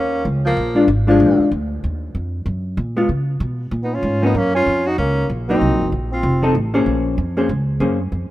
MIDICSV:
0, 0, Header, 1, 6, 480
1, 0, Start_track
1, 0, Key_signature, -5, "minor"
1, 0, Tempo, 314795
1, 865, Time_signature, 4, 2, 24, 8
1, 12670, End_track
2, 0, Start_track
2, 0, Title_t, "Tenor saxophone"
2, 0, Program_c, 0, 66
2, 0, Note_on_c, 0, 61, 94
2, 402, Note_off_c, 0, 61, 0
2, 715, Note_on_c, 0, 58, 81
2, 1318, Note_off_c, 0, 58, 0
2, 1677, Note_on_c, 0, 56, 67
2, 2278, Note_off_c, 0, 56, 0
2, 5856, Note_on_c, 0, 63, 69
2, 6021, Note_on_c, 0, 65, 90
2, 6044, Note_off_c, 0, 63, 0
2, 6470, Note_off_c, 0, 65, 0
2, 6493, Note_on_c, 0, 63, 83
2, 6674, Note_on_c, 0, 61, 94
2, 6697, Note_off_c, 0, 63, 0
2, 6944, Note_off_c, 0, 61, 0
2, 6958, Note_on_c, 0, 65, 98
2, 7416, Note_on_c, 0, 66, 88
2, 7439, Note_off_c, 0, 65, 0
2, 7588, Note_off_c, 0, 66, 0
2, 7597, Note_on_c, 0, 61, 88
2, 8038, Note_off_c, 0, 61, 0
2, 8382, Note_on_c, 0, 63, 85
2, 8991, Note_off_c, 0, 63, 0
2, 9352, Note_on_c, 0, 65, 78
2, 9955, Note_off_c, 0, 65, 0
2, 12670, End_track
3, 0, Start_track
3, 0, Title_t, "Hollow-body jazz guitar"
3, 0, Program_c, 1, 26
3, 1140, Note_on_c, 1, 56, 63
3, 1154, Note_on_c, 1, 62, 66
3, 1164, Note_on_c, 1, 65, 71
3, 1317, Note_off_c, 1, 56, 0
3, 1324, Note_off_c, 1, 62, 0
3, 1329, Note_off_c, 1, 65, 0
3, 1635, Note_on_c, 1, 56, 63
3, 1646, Note_on_c, 1, 62, 66
3, 1653, Note_on_c, 1, 65, 77
3, 2266, Note_off_c, 1, 56, 0
3, 2271, Note_off_c, 1, 62, 0
3, 2275, Note_off_c, 1, 65, 0
3, 4522, Note_on_c, 1, 56, 63
3, 4526, Note_on_c, 1, 59, 70
3, 4540, Note_on_c, 1, 65, 71
3, 4688, Note_off_c, 1, 56, 0
3, 4690, Note_off_c, 1, 59, 0
3, 4697, Note_off_c, 1, 65, 0
3, 6438, Note_on_c, 1, 53, 60
3, 6449, Note_on_c, 1, 58, 68
3, 6455, Note_on_c, 1, 61, 83
3, 6606, Note_off_c, 1, 53, 0
3, 6611, Note_off_c, 1, 58, 0
3, 6614, Note_off_c, 1, 61, 0
3, 8370, Note_on_c, 1, 54, 60
3, 8383, Note_on_c, 1, 58, 61
3, 8389, Note_on_c, 1, 63, 73
3, 8993, Note_off_c, 1, 54, 0
3, 9000, Note_off_c, 1, 58, 0
3, 9003, Note_off_c, 1, 63, 0
3, 9790, Note_on_c, 1, 53, 59
3, 9800, Note_on_c, 1, 60, 73
3, 9811, Note_on_c, 1, 69, 74
3, 9812, Note_on_c, 1, 63, 71
3, 9962, Note_off_c, 1, 53, 0
3, 9967, Note_off_c, 1, 60, 0
3, 9972, Note_off_c, 1, 63, 0
3, 9972, Note_off_c, 1, 69, 0
3, 10274, Note_on_c, 1, 58, 70
3, 10278, Note_on_c, 1, 61, 78
3, 10293, Note_on_c, 1, 68, 79
3, 10293, Note_on_c, 1, 72, 79
3, 10904, Note_off_c, 1, 58, 0
3, 10907, Note_off_c, 1, 61, 0
3, 10914, Note_off_c, 1, 68, 0
3, 10914, Note_off_c, 1, 72, 0
3, 11235, Note_on_c, 1, 58, 65
3, 11242, Note_on_c, 1, 61, 65
3, 11247, Note_on_c, 1, 68, 70
3, 11255, Note_on_c, 1, 72, 69
3, 11404, Note_off_c, 1, 58, 0
3, 11407, Note_off_c, 1, 61, 0
3, 11410, Note_off_c, 1, 68, 0
3, 11414, Note_off_c, 1, 72, 0
3, 11898, Note_on_c, 1, 58, 61
3, 11905, Note_on_c, 1, 61, 58
3, 11910, Note_on_c, 1, 68, 58
3, 11911, Note_on_c, 1, 72, 64
3, 12166, Note_off_c, 1, 58, 0
3, 12169, Note_off_c, 1, 61, 0
3, 12171, Note_off_c, 1, 68, 0
3, 12172, Note_off_c, 1, 72, 0
3, 12670, End_track
4, 0, Start_track
4, 0, Title_t, "Alto saxophone"
4, 0, Program_c, 2, 65
4, 0, Note_on_c, 2, 58, 66
4, 397, Note_off_c, 2, 58, 0
4, 690, Note_on_c, 2, 53, 67
4, 1304, Note_off_c, 2, 53, 0
4, 1657, Note_on_c, 2, 53, 61
4, 2268, Note_off_c, 2, 53, 0
4, 5840, Note_on_c, 2, 59, 63
4, 6003, Note_on_c, 2, 61, 75
4, 6026, Note_off_c, 2, 59, 0
4, 6457, Note_off_c, 2, 61, 0
4, 6466, Note_on_c, 2, 59, 66
4, 6644, Note_on_c, 2, 58, 77
4, 6667, Note_off_c, 2, 59, 0
4, 6924, Note_off_c, 2, 58, 0
4, 6933, Note_on_c, 2, 61, 82
4, 7431, Note_on_c, 2, 63, 75
4, 7454, Note_off_c, 2, 61, 0
4, 7601, Note_off_c, 2, 63, 0
4, 7608, Note_on_c, 2, 58, 67
4, 8043, Note_off_c, 2, 58, 0
4, 8355, Note_on_c, 2, 60, 70
4, 8976, Note_off_c, 2, 60, 0
4, 9321, Note_on_c, 2, 60, 72
4, 9939, Note_off_c, 2, 60, 0
4, 12670, End_track
5, 0, Start_track
5, 0, Title_t, "Upright bass"
5, 0, Program_c, 3, 32
5, 0, Note_on_c, 3, 39, 80
5, 371, Note_off_c, 3, 39, 0
5, 382, Note_on_c, 3, 37, 88
5, 849, Note_off_c, 3, 37, 0
5, 865, Note_on_c, 3, 34, 80
5, 1331, Note_off_c, 3, 34, 0
5, 1338, Note_on_c, 3, 32, 88
5, 1807, Note_off_c, 3, 32, 0
5, 1827, Note_on_c, 3, 34, 93
5, 2100, Note_off_c, 3, 34, 0
5, 2309, Note_on_c, 3, 38, 83
5, 2773, Note_off_c, 3, 38, 0
5, 2800, Note_on_c, 3, 39, 79
5, 3259, Note_off_c, 3, 39, 0
5, 3272, Note_on_c, 3, 41, 83
5, 3734, Note_off_c, 3, 41, 0
5, 3745, Note_on_c, 3, 42, 85
5, 4211, Note_off_c, 3, 42, 0
5, 4227, Note_on_c, 3, 46, 90
5, 4692, Note_off_c, 3, 46, 0
5, 4708, Note_on_c, 3, 49, 74
5, 5172, Note_off_c, 3, 49, 0
5, 5187, Note_on_c, 3, 47, 89
5, 5652, Note_off_c, 3, 47, 0
5, 5661, Note_on_c, 3, 46, 88
5, 6129, Note_off_c, 3, 46, 0
5, 6139, Note_on_c, 3, 44, 86
5, 6607, Note_off_c, 3, 44, 0
5, 6625, Note_on_c, 3, 42, 81
5, 7091, Note_off_c, 3, 42, 0
5, 7112, Note_on_c, 3, 41, 81
5, 7574, Note_off_c, 3, 41, 0
5, 7593, Note_on_c, 3, 37, 86
5, 8055, Note_off_c, 3, 37, 0
5, 8074, Note_on_c, 3, 34, 83
5, 8535, Note_off_c, 3, 34, 0
5, 8556, Note_on_c, 3, 36, 76
5, 8715, Note_off_c, 3, 36, 0
5, 8715, Note_on_c, 3, 34, 56
5, 8855, Note_off_c, 3, 34, 0
5, 8864, Note_on_c, 3, 30, 64
5, 9013, Note_off_c, 3, 30, 0
5, 9029, Note_on_c, 3, 34, 81
5, 9493, Note_off_c, 3, 34, 0
5, 9499, Note_on_c, 3, 29, 90
5, 9967, Note_off_c, 3, 29, 0
5, 9983, Note_on_c, 3, 33, 88
5, 10449, Note_off_c, 3, 33, 0
5, 10460, Note_on_c, 3, 34, 78
5, 10927, Note_off_c, 3, 34, 0
5, 10944, Note_on_c, 3, 41, 89
5, 11409, Note_off_c, 3, 41, 0
5, 11424, Note_on_c, 3, 37, 82
5, 11889, Note_off_c, 3, 37, 0
5, 11897, Note_on_c, 3, 42, 91
5, 12365, Note_off_c, 3, 42, 0
5, 12380, Note_on_c, 3, 41, 78
5, 12655, Note_off_c, 3, 41, 0
5, 12670, End_track
6, 0, Start_track
6, 0, Title_t, "Muted upright bass strokes"
6, 2125, Note_on_c, 9, 29, 39
6, 2277, Note_off_c, 9, 29, 0
6, 12670, End_track
0, 0, End_of_file